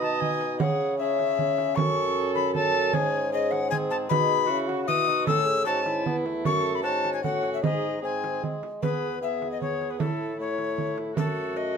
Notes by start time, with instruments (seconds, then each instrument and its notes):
Already playing: bassoon B2 D#4, viola D#5
0.02 recorder A5, frame drum
0.21 recorder G#5, frame drum
0.41 frame drum
0.59 bassoon C#3 C#4, viola G#4, recorder F#5, frame drum
0.98 bassoon C#4, viola G#4, recorder E5
1.19 frame drum
1.39 frame drum
1.58 frame drum
1.76 bassoon F#2 C#4, viola A4, recorder C#6, frame drum
2.35 recorder B5, frame drum
2.55 bassoon C#4, viola A4, recorder A5, frame drum
2.74 frame drum
2.93 bassoon G#2 C#4, viola G#4, recorder G#5, frame drum
3.32 bassoon C#4, viola G#4, recorder D#5
3.51 recorder F#5, frame drum
3.70 bassoon C4, viola G#4, recorder G#5, frame drum
3.90 recorder A5, frame drum
4.09 bassoon B2 D#4, viola G#4, recorder B5, frame drum
4.47 bassoon C#3 E4, viola F#4
4.68 bassoon F#4, frame drum
4.85 bassoon B2 E4, viola F#4, recorder D#6, frame drum
5.08 bassoon D#4, frame drum
5.26 bassoon A2 C#4, viola A4, recorder E6, frame drum
5.45 viola G#4
5.65 bassoon G#2 C#4, viola F#4, recorder A5
5.85 viola E4, frame drum
6.06 bassoon E2 B3, frame drum
6.25 bassoon A3, frame drum
6.45 bassoon F#2, viola A4, recorder C#6, frame drum
6.75 recorder B5
6.83 bassoon G#2 C#4, viola F#4, recorder A5
7.05 frame drum
7.13 recorder G#5
7.23 bassoon A2 C#4, viola F#4, recorder F#5, frame drum
7.43 frame drum
7.54 recorder E5
7.62 bassoon G#2 D#4, viola G#4, recorder D#5, frame drum
8.02 bassoon G#2 C4, viola G#4, recorder G#5
8.24 frame drum
8.43 bassoon G#3, frame drum
8.63 frame drum
8.82 bassoon E2 B3, viola G#4, recorder B4, frame drum
9.21 bassoon B3, viola G#4, recorder E5
9.42 frame drum
9.52 recorder D#5
9.61 recorder C#5, frame drum
9.81 frame drum
9.90 recorder B4
9.99 bassoon A2 A3, viola E4, recorder A4, frame drum
10.39 bassoon A3, viola E4, recorder C#5
10.58 frame drum
10.78 frame drum
10.98 frame drum
11.16 bassoon F#2 A3, viola F#4, recorder A4, frame drum
11.57 recorder D#5